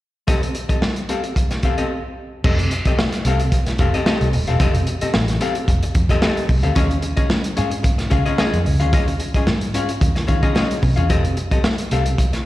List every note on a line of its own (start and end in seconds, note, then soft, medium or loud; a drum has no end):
0.27 0.48 C4 medium
0.27 0.42 G4 medium
0.27 0.41 A4 medium
0.27 0.41 D#5 medium
0.27 kick loud
0.27 closed hi-hat medium
0.42 muted hollow-body jazz guitar stroke soft
0.42 closed hi-hat medium
0.54 muted hollow-body jazz guitar stroke soft
0.54 closed hi-hat medium
0.69 0.81 C4 soft
0.69 0.81 G4 soft
0.69 0.81 A4 soft
0.69 0.81 D#5 soft
0.69 kick medium
0.69 closed hi-hat medium
0.82 muted hollow-body jazz guitar stroke soft
0.82 snare medium
0.96 closed hi-hat soft
1.09 1.26 C4 medium
1.09 1.23 G4 medium
1.09 1.22 A4 medium
1.09 1.23 F5 medium
1.09 closed hi-hat medium
1.24 muted hollow-body jazz guitar stroke soft
1.24 closed hi-hat soft
1.36 muted hollow-body jazz guitar stroke soft
1.36 kick medium
1.36 closed hi-hat medium
1.51 muted hollow-body jazz guitar stroke soft
1.51 snare soft
1.51 closed hi-hat soft
1.63 1.78 C4 medium
1.63 1.77 G4 medium
1.63 1.77 A4 medium
1.63 1.77 F5 medium
1.63 kick medium
1.63 closed hi-hat medium
1.78 1.91 C4 medium
1.78 1.90 G4 medium
1.78 1.90 A4 medium
1.78 1.90 D#5 medium
1.78 closed hi-hat soft
2.44 2.66 F1 loud
2.44 2.65 C4 medium
2.44 2.59 G4 medium
2.44 2.58 A4 medium
2.44 2.58 D#5 medium
2.44 kick loud
2.44 crash loud
2.59 muted hollow-body jazz guitar stroke soft
2.59 closed hi-hat medium
2.71 muted hollow-body jazz guitar stroke soft
2.71 closed hi-hat medium
2.85 2.98 C4 medium
2.85 2.99 G4 medium
2.85 2.99 A4 medium
2.85 2.99 D#5 medium
2.85 muted fingered electric bass stroke soft
2.85 kick medium
2.85 closed hi-hat medium
2.99 muted hollow-body jazz guitar stroke soft
2.99 snare loud
3.12 snare soft
3.12 closed hi-hat medium
3.25 3.47 C2 medium
3.25 3.42 C4 medium
3.25 3.40 G4 medium
3.25 3.40 A4 medium
3.25 3.40 F5 medium
3.25 closed hi-hat medium
3.40 muted hollow-body jazz guitar stroke soft
3.40 closed hi-hat medium
3.52 muted hollow-body jazz guitar stroke soft
3.52 kick medium
3.52 closed hi-hat medium
3.66 muted fingered electric bass stroke soft
3.66 muted hollow-body jazz guitar stroke soft
3.66 snare soft
3.66 closed hi-hat soft
3.78 3.91 F1 medium
3.78 3.94 C4 medium
3.78 3.94 G4 medium
3.78 3.94 A4 medium
3.78 3.94 F5 medium
3.78 kick medium
3.78 closed hi-hat medium
3.94 4.05 C4 medium
3.94 4.05 G4 medium
3.94 4.06 A4 medium
3.94 4.06 D#5 medium
3.94 closed hi-hat soft
4.06 4.27 C4 medium
4.06 4.27 G4 medium
4.06 4.28 A4 medium
4.06 4.28 D#5 medium
4.06 snare loud
4.21 4.31 C2 medium
4.21 closed hi-hat medium
4.33 4.45 D#1 medium
4.33 muted hollow-body jazz guitar stroke soft
4.33 open hi-hat medium
4.47 4.58 E1 medium
4.47 4.59 C4 medium
4.47 4.59 G4 soft
4.47 4.59 A4 medium
4.47 4.61 F5 medium
4.47 closed hi-hat soft
4.60 4.82 F1 loud
4.60 4.81 C4 medium
4.60 4.75 G4 medium
4.60 4.74 A4 loud
4.60 4.74 D#5 medium
4.60 kick loud
4.60 closed hi-hat medium
4.74 muted hollow-body jazz guitar stroke medium
4.74 closed hi-hat medium
4.87 muted hollow-body jazz guitar stroke soft
4.87 closed hi-hat medium
5.01 5.13 C4 medium
5.01 5.13 G4 soft
5.01 5.13 A4 medium
5.01 5.13 D#5 medium
5.01 muted fingered electric bass stroke soft
5.01 closed hi-hat medium
5.14 5.37 A1 medium
5.14 muted hollow-body jazz guitar stroke soft
5.14 snare loud
5.28 snare soft
5.28 closed hi-hat medium
5.41 5.58 C4 medium
5.41 5.56 G4 medium
5.41 5.55 A4 medium
5.41 5.55 F5 medium
5.41 closed hi-hat medium
5.55 muted hollow-body jazz guitar stroke soft
5.55 closed hi-hat medium
5.68 5.80 F1 loud
5.68 muted hollow-body jazz guitar stroke soft
5.68 kick loud
5.68 closed hi-hat medium
5.83 muted hollow-body jazz guitar stroke soft
5.83 closed hi-hat medium
5.95 6.07 F2 medium
5.95 kick medium
5.95 closed hi-hat medium
6.09 6.21 C4 medium
6.09 6.22 G4 medium
6.09 6.22 A4 medium
6.09 6.23 D#5 loud
6.09 kick loud
6.09 closed hi-hat medium
6.22 6.43 C4 medium
6.22 6.44 G4 medium
6.22 6.44 A4 medium
6.22 6.44 D#5 medium
6.22 snare loud
6.37 closed hi-hat medium
6.49 6.64 C2 loud
6.49 muted hollow-body jazz guitar stroke soft
6.49 kick loud
6.49 open hi-hat medium
6.63 6.74 D2 medium
6.63 6.75 C4 medium
6.63 6.76 G4 medium
6.63 6.76 A4 medium
6.63 6.76 F5 medium
6.63 closed hi-hat medium
6.75 6.98 D#2 loud
6.75 6.97 C#4 medium
6.75 6.90 F4 medium
6.75 6.89 G#4 loud
6.75 6.89 D#5 loud
6.75 kick loud
6.75 closed hi-hat medium
6.90 muted hollow-body jazz guitar stroke soft
6.90 closed hi-hat medium
7.02 muted hollow-body jazz guitar stroke soft
7.02 closed hi-hat medium
7.17 7.28 C#4 soft
7.17 7.28 F4 medium
7.17 7.29 G#4 medium
7.17 7.29 D#5 medium
7.17 muted fingered electric bass stroke soft
7.17 kick medium
7.17 closed hi-hat medium
7.29 muted hollow-body jazz guitar stroke soft
7.29 snare loud
7.44 closed hi-hat medium
7.57 7.80 G#2 medium
7.57 7.74 C#4 medium
7.57 7.70 F4 medium
7.57 7.70 G#4 medium
7.57 7.70 F5 medium
7.57 closed hi-hat medium
7.71 muted hollow-body jazz guitar stroke soft
7.71 closed hi-hat medium
7.83 muted hollow-body jazz guitar stroke soft
7.83 kick loud
7.83 closed hi-hat medium
7.98 muted hollow-body jazz guitar stroke soft
7.98 muted fingered electric bass stroke soft
7.98 snare soft
7.98 closed hi-hat medium
8.10 8.23 C#2 medium
8.10 8.26 C#4 medium
8.10 8.25 F4 medium
8.10 8.25 G#4 medium
8.10 8.25 F5 medium
8.10 kick medium
8.10 closed hi-hat medium
8.26 8.37 C#4 medium
8.26 8.38 F4 medium
8.26 8.38 G#4 medium
8.26 8.38 D#5 medium
8.26 closed hi-hat medium
8.38 8.60 C#4 medium
8.38 8.60 F4 medium
8.38 8.60 G#4 medium
8.38 8.60 D#5 medium
8.38 snare loud
8.53 8.64 F2 medium
8.53 closed hi-hat medium
8.65 8.81 C#2 medium
8.65 muted hollow-body jazz guitar stroke soft
8.65 open hi-hat medium
8.80 8.93 D2 medium
8.80 8.92 C#4 soft
8.80 8.92 F4 medium
8.80 8.92 G#4 medium
8.80 8.94 F5 medium
8.80 closed hi-hat soft
8.93 9.15 D#2 medium
8.93 9.14 C#4 medium
8.93 9.07 F4 medium
8.93 9.07 G#4 medium
8.93 9.06 D#5 medium
8.93 kick loud
8.93 closed hi-hat medium
9.08 muted hollow-body jazz guitar stroke medium
9.08 closed hi-hat medium
9.20 muted hollow-body jazz guitar stroke soft
9.20 closed hi-hat medium
9.34 9.46 C#4 soft
9.34 9.46 F4 soft
9.34 9.47 G#4 medium
9.34 9.47 D#5 medium
9.34 muted fingered electric bass stroke soft
9.34 kick medium
9.34 closed hi-hat medium
9.47 9.70 G#2 medium
9.47 muted hollow-body jazz guitar stroke soft
9.47 snare loud
9.61 closed hi-hat medium
9.74 9.91 C#4 medium
9.74 9.89 F4 medium
9.74 9.89 G#4 medium
9.74 9.89 F5 medium
9.74 closed hi-hat medium
9.89 muted hollow-body jazz guitar stroke soft
9.89 closed hi-hat medium
10.01 10.13 D#2 medium
10.01 muted hollow-body jazz guitar stroke soft
10.01 kick loud
10.01 closed hi-hat loud
10.15 muted hollow-body jazz guitar stroke soft
10.15 snare soft
10.15 closed hi-hat medium
10.27 10.41 D#3 medium
10.27 10.42 C#4 medium
10.27 10.42 F4 medium
10.27 10.42 G#4 medium
10.27 10.42 F5 medium
10.27 kick medium
10.27 closed hi-hat medium
10.42 10.54 C#4 medium
10.42 10.54 F4 medium
10.42 10.54 G#4 medium
10.42 10.55 D#5 medium
10.42 kick loud
10.42 closed hi-hat soft
10.55 10.76 C#4 medium
10.55 10.77 F4 medium
10.55 10.77 G#4 medium
10.55 10.77 D#5 medium
10.55 snare loud
10.71 closed hi-hat medium
10.82 10.95 C3 medium
10.82 muted hollow-body jazz guitar stroke soft
10.82 kick loud
10.82 open hi-hat medium
10.96 11.08 E2 medium
10.96 11.09 C#4 soft
10.96 11.09 F4 medium
10.96 11.10 G#4 medium
10.96 11.10 F5 medium
10.96 closed hi-hat medium
11.09 11.32 F1 loud
11.09 11.31 C4 medium
11.09 11.24 G4 medium
11.09 11.24 A4 medium
11.09 11.23 D#5 medium
11.09 kick loud
11.09 closed hi-hat medium
11.24 muted hollow-body jazz guitar stroke soft
11.24 closed hi-hat medium
11.37 muted hollow-body jazz guitar stroke soft
11.37 closed hi-hat medium
11.51 11.64 C4 soft
11.51 11.64 G4 soft
11.51 11.65 A4 medium
11.51 11.65 D#5 soft
11.51 muted fingered electric bass stroke soft
11.51 kick loud
11.51 closed hi-hat medium
11.64 muted hollow-body jazz guitar stroke soft
11.64 snare loud
11.78 closed hi-hat medium
11.91 12.14 C2 medium
11.91 12.08 C4 medium
11.91 12.05 G4 medium
11.91 12.05 A4 medium
11.91 12.05 F5 medium
11.91 closed hi-hat medium
12.05 muted hollow-body jazz guitar stroke soft
12.05 closed hi-hat medium
12.18 muted hollow-body jazz guitar stroke soft
12.18 kick loud
12.18 closed hi-hat loud
12.33 muted hollow-body jazz guitar stroke soft
12.33 muted fingered electric bass stroke soft
12.33 snare soft
12.33 closed hi-hat medium